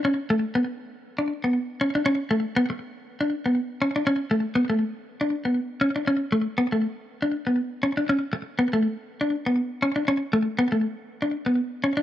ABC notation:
X:1
M:4/4
L:1/16
Q:"Swing 16ths" 1/4=120
K:A
V:1 name="Clean electric guitar"
C2 A,2 B, z4 D2 B,2 z C D | C2 A,2 B, z4 D2 B,2 z C D | C2 A,2 B, A,2 z2 D2 B,2 z C D | C2 A,2 B, A,2 z2 D2 B,2 z C D |
C2 z2 B, A,2 z2 D2 B,2 z C D | C2 A,2 B, A,2 z2 D2 B,2 z C D |]